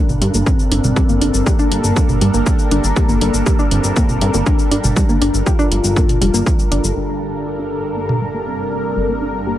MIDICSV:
0, 0, Header, 1, 7, 480
1, 0, Start_track
1, 0, Key_signature, -2, "minor"
1, 0, Tempo, 500000
1, 926, Time_signature, 4, 2, 24, 8
1, 9200, End_track
2, 0, Start_track
2, 0, Title_t, "Analog synth pad"
2, 0, Program_c, 0, 89
2, 0, Note_on_c, 0, 55, 82
2, 0, Note_on_c, 0, 62, 77
2, 0, Note_on_c, 0, 69, 79
2, 0, Note_on_c, 0, 70, 95
2, 6648, Note_off_c, 0, 55, 0
2, 6648, Note_off_c, 0, 70, 0
2, 6649, Note_off_c, 0, 62, 0
2, 6649, Note_off_c, 0, 69, 0
2, 6685, Note_on_c, 0, 62, 73
2, 6686, Note_on_c, 0, 55, 82
2, 6686, Note_on_c, 0, 69, 75
2, 6686, Note_on_c, 0, 70, 92
2, 9200, Note_off_c, 0, 55, 0
2, 9200, Note_off_c, 0, 62, 0
2, 9200, Note_off_c, 0, 69, 0
2, 9200, Note_off_c, 0, 70, 0
2, 9200, End_track
3, 0, Start_track
3, 0, Title_t, "Soft synth lead"
3, 0, Program_c, 1, 80
3, 0, Note_on_c, 1, 62, 95
3, 446, Note_on_c, 1, 60, 100
3, 460, Note_off_c, 1, 62, 0
3, 1406, Note_on_c, 1, 58, 102
3, 1421, Note_off_c, 1, 60, 0
3, 2752, Note_off_c, 1, 58, 0
3, 2846, Note_on_c, 1, 58, 106
3, 3471, Note_off_c, 1, 58, 0
3, 3566, Note_on_c, 1, 60, 100
3, 4191, Note_off_c, 1, 60, 0
3, 4287, Note_on_c, 1, 62, 106
3, 5152, Note_off_c, 1, 62, 0
3, 5247, Note_on_c, 1, 65, 101
3, 6592, Note_off_c, 1, 65, 0
3, 6686, Note_on_c, 1, 62, 99
3, 7312, Note_off_c, 1, 62, 0
3, 7408, Note_on_c, 1, 62, 91
3, 8032, Note_off_c, 1, 62, 0
3, 8127, Note_on_c, 1, 60, 96
3, 8992, Note_off_c, 1, 60, 0
3, 9086, Note_on_c, 1, 58, 99
3, 9200, Note_off_c, 1, 58, 0
3, 9200, End_track
4, 0, Start_track
4, 0, Title_t, "Synth arpeggio sound"
4, 0, Program_c, 2, 84
4, 206, Note_on_c, 2, 55, 75
4, 264, Note_off_c, 2, 55, 0
4, 328, Note_on_c, 2, 58, 71
4, 362, Note_off_c, 2, 58, 0
4, 686, Note_on_c, 2, 62, 74
4, 721, Note_off_c, 2, 62, 0
4, 927, Note_on_c, 2, 55, 85
4, 962, Note_off_c, 2, 55, 0
4, 1048, Note_on_c, 2, 58, 69
4, 1082, Note_off_c, 2, 58, 0
4, 1166, Note_on_c, 2, 62, 72
4, 1225, Note_off_c, 2, 62, 0
4, 1407, Note_on_c, 2, 67, 78
4, 1442, Note_off_c, 2, 67, 0
4, 1528, Note_on_c, 2, 62, 98
4, 1613, Note_off_c, 2, 62, 0
4, 1887, Note_on_c, 2, 58, 80
4, 1922, Note_off_c, 2, 58, 0
4, 2126, Note_on_c, 2, 55, 75
4, 2185, Note_off_c, 2, 55, 0
4, 2248, Note_on_c, 2, 58, 74
4, 2282, Note_off_c, 2, 58, 0
4, 2606, Note_on_c, 2, 62, 78
4, 2641, Note_off_c, 2, 62, 0
4, 2846, Note_on_c, 2, 55, 83
4, 2881, Note_off_c, 2, 55, 0
4, 2968, Note_on_c, 2, 58, 74
4, 3002, Note_off_c, 2, 58, 0
4, 3087, Note_on_c, 2, 62, 68
4, 3145, Note_off_c, 2, 62, 0
4, 3326, Note_on_c, 2, 67, 79
4, 3361, Note_off_c, 2, 67, 0
4, 3447, Note_on_c, 2, 62, 104
4, 3533, Note_off_c, 2, 62, 0
4, 3806, Note_on_c, 2, 58, 80
4, 3841, Note_off_c, 2, 58, 0
4, 4047, Note_on_c, 2, 55, 74
4, 4105, Note_off_c, 2, 55, 0
4, 4168, Note_on_c, 2, 58, 75
4, 4202, Note_off_c, 2, 58, 0
4, 4525, Note_on_c, 2, 62, 76
4, 4561, Note_off_c, 2, 62, 0
4, 4766, Note_on_c, 2, 55, 81
4, 4801, Note_off_c, 2, 55, 0
4, 4887, Note_on_c, 2, 58, 72
4, 4922, Note_off_c, 2, 58, 0
4, 5006, Note_on_c, 2, 62, 72
4, 5064, Note_off_c, 2, 62, 0
4, 5246, Note_on_c, 2, 67, 77
4, 5281, Note_off_c, 2, 67, 0
4, 5366, Note_on_c, 2, 62, 101
4, 5452, Note_off_c, 2, 62, 0
4, 5725, Note_on_c, 2, 58, 79
4, 5761, Note_off_c, 2, 58, 0
4, 5965, Note_on_c, 2, 55, 77
4, 6024, Note_off_c, 2, 55, 0
4, 6086, Note_on_c, 2, 58, 75
4, 6121, Note_off_c, 2, 58, 0
4, 6445, Note_on_c, 2, 62, 77
4, 6481, Note_off_c, 2, 62, 0
4, 6685, Note_on_c, 2, 55, 76
4, 6721, Note_off_c, 2, 55, 0
4, 6806, Note_on_c, 2, 58, 67
4, 6841, Note_off_c, 2, 58, 0
4, 7165, Note_on_c, 2, 67, 75
4, 7201, Note_off_c, 2, 67, 0
4, 7287, Note_on_c, 2, 62, 92
4, 7373, Note_off_c, 2, 62, 0
4, 7646, Note_on_c, 2, 58, 74
4, 7681, Note_off_c, 2, 58, 0
4, 7886, Note_on_c, 2, 55, 72
4, 7945, Note_off_c, 2, 55, 0
4, 8008, Note_on_c, 2, 58, 71
4, 8042, Note_off_c, 2, 58, 0
4, 8367, Note_on_c, 2, 62, 71
4, 8402, Note_off_c, 2, 62, 0
4, 8606, Note_on_c, 2, 55, 79
4, 8641, Note_off_c, 2, 55, 0
4, 8729, Note_on_c, 2, 58, 72
4, 8762, Note_off_c, 2, 58, 0
4, 8847, Note_on_c, 2, 62, 69
4, 8905, Note_off_c, 2, 62, 0
4, 9087, Note_on_c, 2, 67, 74
4, 9121, Note_off_c, 2, 67, 0
4, 9200, End_track
5, 0, Start_track
5, 0, Title_t, "Synth drone"
5, 0, Program_c, 3, 95
5, 0, Note_on_c, 3, 43, 78
5, 6673, Note_off_c, 3, 43, 0
5, 6684, Note_on_c, 3, 43, 78
5, 9200, Note_off_c, 3, 43, 0
5, 9200, End_track
6, 0, Start_track
6, 0, Title_t, "Analog synth bass"
6, 0, Program_c, 4, 38
6, 88, Note_on_c, 4, 31, 76
6, 169, Note_off_c, 4, 31, 0
6, 206, Note_on_c, 4, 43, 96
6, 289, Note_off_c, 4, 43, 0
6, 327, Note_on_c, 4, 31, 82
6, 409, Note_off_c, 4, 31, 0
6, 686, Note_on_c, 4, 31, 90
6, 769, Note_off_c, 4, 31, 0
6, 807, Note_on_c, 4, 31, 77
6, 889, Note_off_c, 4, 31, 0
6, 1048, Note_on_c, 4, 31, 70
6, 1129, Note_off_c, 4, 31, 0
6, 1166, Note_on_c, 4, 31, 94
6, 1249, Note_off_c, 4, 31, 0
6, 1287, Note_on_c, 4, 31, 76
6, 1368, Note_off_c, 4, 31, 0
6, 1645, Note_on_c, 4, 31, 93
6, 1729, Note_off_c, 4, 31, 0
6, 1766, Note_on_c, 4, 31, 82
6, 1848, Note_off_c, 4, 31, 0
6, 2007, Note_on_c, 4, 31, 72
6, 2089, Note_off_c, 4, 31, 0
6, 2126, Note_on_c, 4, 43, 93
6, 2209, Note_off_c, 4, 43, 0
6, 2247, Note_on_c, 4, 31, 83
6, 2329, Note_off_c, 4, 31, 0
6, 2606, Note_on_c, 4, 31, 87
6, 2689, Note_off_c, 4, 31, 0
6, 2727, Note_on_c, 4, 31, 81
6, 2809, Note_off_c, 4, 31, 0
6, 2967, Note_on_c, 4, 31, 72
6, 3049, Note_off_c, 4, 31, 0
6, 3086, Note_on_c, 4, 31, 94
6, 3169, Note_off_c, 4, 31, 0
6, 3207, Note_on_c, 4, 31, 77
6, 3288, Note_off_c, 4, 31, 0
6, 3566, Note_on_c, 4, 31, 93
6, 3649, Note_off_c, 4, 31, 0
6, 3687, Note_on_c, 4, 31, 78
6, 3769, Note_off_c, 4, 31, 0
6, 3927, Note_on_c, 4, 31, 75
6, 4009, Note_off_c, 4, 31, 0
6, 4046, Note_on_c, 4, 43, 97
6, 4129, Note_off_c, 4, 43, 0
6, 4166, Note_on_c, 4, 31, 82
6, 4248, Note_off_c, 4, 31, 0
6, 4526, Note_on_c, 4, 31, 88
6, 4609, Note_off_c, 4, 31, 0
6, 4647, Note_on_c, 4, 31, 81
6, 4728, Note_off_c, 4, 31, 0
6, 4887, Note_on_c, 4, 31, 72
6, 4968, Note_off_c, 4, 31, 0
6, 5006, Note_on_c, 4, 31, 96
6, 5089, Note_off_c, 4, 31, 0
6, 5127, Note_on_c, 4, 31, 79
6, 5209, Note_off_c, 4, 31, 0
6, 5486, Note_on_c, 4, 31, 93
6, 5569, Note_off_c, 4, 31, 0
6, 5608, Note_on_c, 4, 31, 80
6, 5847, Note_on_c, 4, 38, 77
6, 5862, Note_off_c, 4, 31, 0
6, 5929, Note_off_c, 4, 38, 0
6, 5966, Note_on_c, 4, 29, 96
6, 6049, Note_off_c, 4, 29, 0
6, 6087, Note_on_c, 4, 31, 83
6, 6169, Note_off_c, 4, 31, 0
6, 6446, Note_on_c, 4, 31, 93
6, 6529, Note_off_c, 4, 31, 0
6, 6566, Note_on_c, 4, 31, 82
6, 6648, Note_off_c, 4, 31, 0
6, 6686, Note_on_c, 4, 31, 78
6, 8583, Note_off_c, 4, 31, 0
6, 8606, Note_on_c, 4, 31, 81
6, 9200, Note_off_c, 4, 31, 0
6, 9200, End_track
7, 0, Start_track
7, 0, Title_t, "Drums"
7, 89, Note_on_c, 9, 45, 79
7, 89, Note_on_c, 9, 82, 29
7, 185, Note_off_c, 9, 45, 0
7, 185, Note_off_c, 9, 82, 0
7, 207, Note_on_c, 9, 42, 98
7, 303, Note_off_c, 9, 42, 0
7, 329, Note_on_c, 9, 82, 61
7, 425, Note_off_c, 9, 82, 0
7, 446, Note_on_c, 9, 36, 107
7, 448, Note_on_c, 9, 82, 51
7, 542, Note_off_c, 9, 36, 0
7, 544, Note_off_c, 9, 82, 0
7, 569, Note_on_c, 9, 82, 30
7, 665, Note_off_c, 9, 82, 0
7, 687, Note_on_c, 9, 42, 106
7, 783, Note_off_c, 9, 42, 0
7, 808, Note_on_c, 9, 45, 83
7, 808, Note_on_c, 9, 82, 57
7, 904, Note_off_c, 9, 45, 0
7, 904, Note_off_c, 9, 82, 0
7, 925, Note_on_c, 9, 36, 115
7, 927, Note_on_c, 9, 82, 53
7, 1021, Note_off_c, 9, 36, 0
7, 1023, Note_off_c, 9, 82, 0
7, 1048, Note_on_c, 9, 82, 32
7, 1144, Note_off_c, 9, 82, 0
7, 1166, Note_on_c, 9, 42, 95
7, 1262, Note_off_c, 9, 42, 0
7, 1288, Note_on_c, 9, 82, 61
7, 1384, Note_off_c, 9, 82, 0
7, 1406, Note_on_c, 9, 36, 110
7, 1407, Note_on_c, 9, 82, 53
7, 1502, Note_off_c, 9, 36, 0
7, 1503, Note_off_c, 9, 82, 0
7, 1528, Note_on_c, 9, 82, 31
7, 1624, Note_off_c, 9, 82, 0
7, 1647, Note_on_c, 9, 42, 97
7, 1743, Note_off_c, 9, 42, 0
7, 1768, Note_on_c, 9, 82, 65
7, 1864, Note_off_c, 9, 82, 0
7, 1886, Note_on_c, 9, 36, 107
7, 1886, Note_on_c, 9, 82, 53
7, 1982, Note_off_c, 9, 36, 0
7, 1982, Note_off_c, 9, 82, 0
7, 2007, Note_on_c, 9, 45, 81
7, 2007, Note_on_c, 9, 82, 32
7, 2103, Note_off_c, 9, 45, 0
7, 2103, Note_off_c, 9, 82, 0
7, 2125, Note_on_c, 9, 42, 93
7, 2221, Note_off_c, 9, 42, 0
7, 2247, Note_on_c, 9, 82, 63
7, 2343, Note_off_c, 9, 82, 0
7, 2365, Note_on_c, 9, 82, 54
7, 2366, Note_on_c, 9, 36, 107
7, 2461, Note_off_c, 9, 82, 0
7, 2462, Note_off_c, 9, 36, 0
7, 2487, Note_on_c, 9, 82, 32
7, 2583, Note_off_c, 9, 82, 0
7, 2606, Note_on_c, 9, 42, 99
7, 2702, Note_off_c, 9, 42, 0
7, 2727, Note_on_c, 9, 82, 62
7, 2823, Note_off_c, 9, 82, 0
7, 2845, Note_on_c, 9, 36, 108
7, 2845, Note_on_c, 9, 82, 56
7, 2941, Note_off_c, 9, 36, 0
7, 2941, Note_off_c, 9, 82, 0
7, 2967, Note_on_c, 9, 82, 34
7, 3063, Note_off_c, 9, 82, 0
7, 3085, Note_on_c, 9, 42, 98
7, 3181, Note_off_c, 9, 42, 0
7, 3208, Note_on_c, 9, 82, 65
7, 3304, Note_off_c, 9, 82, 0
7, 3325, Note_on_c, 9, 36, 107
7, 3326, Note_on_c, 9, 82, 54
7, 3421, Note_off_c, 9, 36, 0
7, 3422, Note_off_c, 9, 82, 0
7, 3448, Note_on_c, 9, 82, 32
7, 3544, Note_off_c, 9, 82, 0
7, 3565, Note_on_c, 9, 42, 94
7, 3661, Note_off_c, 9, 42, 0
7, 3687, Note_on_c, 9, 82, 67
7, 3783, Note_off_c, 9, 82, 0
7, 3805, Note_on_c, 9, 36, 104
7, 3805, Note_on_c, 9, 82, 59
7, 3901, Note_off_c, 9, 36, 0
7, 3901, Note_off_c, 9, 82, 0
7, 3926, Note_on_c, 9, 45, 79
7, 3926, Note_on_c, 9, 82, 33
7, 4022, Note_off_c, 9, 45, 0
7, 4022, Note_off_c, 9, 82, 0
7, 4046, Note_on_c, 9, 42, 95
7, 4142, Note_off_c, 9, 42, 0
7, 4167, Note_on_c, 9, 82, 67
7, 4263, Note_off_c, 9, 82, 0
7, 4285, Note_on_c, 9, 36, 107
7, 4285, Note_on_c, 9, 82, 55
7, 4381, Note_off_c, 9, 36, 0
7, 4381, Note_off_c, 9, 82, 0
7, 4407, Note_on_c, 9, 82, 34
7, 4503, Note_off_c, 9, 82, 0
7, 4526, Note_on_c, 9, 42, 94
7, 4622, Note_off_c, 9, 42, 0
7, 4648, Note_on_c, 9, 45, 77
7, 4648, Note_on_c, 9, 82, 64
7, 4744, Note_off_c, 9, 45, 0
7, 4744, Note_off_c, 9, 82, 0
7, 4766, Note_on_c, 9, 36, 112
7, 4767, Note_on_c, 9, 82, 58
7, 4862, Note_off_c, 9, 36, 0
7, 4863, Note_off_c, 9, 82, 0
7, 4889, Note_on_c, 9, 82, 35
7, 4985, Note_off_c, 9, 82, 0
7, 5007, Note_on_c, 9, 42, 101
7, 5103, Note_off_c, 9, 42, 0
7, 5130, Note_on_c, 9, 82, 66
7, 5226, Note_off_c, 9, 82, 0
7, 5246, Note_on_c, 9, 36, 109
7, 5248, Note_on_c, 9, 82, 57
7, 5342, Note_off_c, 9, 36, 0
7, 5344, Note_off_c, 9, 82, 0
7, 5369, Note_on_c, 9, 82, 34
7, 5465, Note_off_c, 9, 82, 0
7, 5487, Note_on_c, 9, 42, 95
7, 5583, Note_off_c, 9, 42, 0
7, 5608, Note_on_c, 9, 82, 69
7, 5704, Note_off_c, 9, 82, 0
7, 5726, Note_on_c, 9, 36, 105
7, 5728, Note_on_c, 9, 82, 58
7, 5822, Note_off_c, 9, 36, 0
7, 5824, Note_off_c, 9, 82, 0
7, 5849, Note_on_c, 9, 42, 55
7, 5849, Note_on_c, 9, 45, 73
7, 5849, Note_on_c, 9, 82, 35
7, 5945, Note_off_c, 9, 42, 0
7, 5945, Note_off_c, 9, 45, 0
7, 5945, Note_off_c, 9, 82, 0
7, 5967, Note_on_c, 9, 42, 97
7, 6063, Note_off_c, 9, 42, 0
7, 6089, Note_on_c, 9, 82, 69
7, 6185, Note_off_c, 9, 82, 0
7, 6206, Note_on_c, 9, 36, 107
7, 6208, Note_on_c, 9, 82, 58
7, 6302, Note_off_c, 9, 36, 0
7, 6304, Note_off_c, 9, 82, 0
7, 6329, Note_on_c, 9, 82, 35
7, 6425, Note_off_c, 9, 82, 0
7, 6448, Note_on_c, 9, 42, 104
7, 6544, Note_off_c, 9, 42, 0
7, 6570, Note_on_c, 9, 82, 69
7, 6666, Note_off_c, 9, 82, 0
7, 7768, Note_on_c, 9, 45, 67
7, 7864, Note_off_c, 9, 45, 0
7, 9200, End_track
0, 0, End_of_file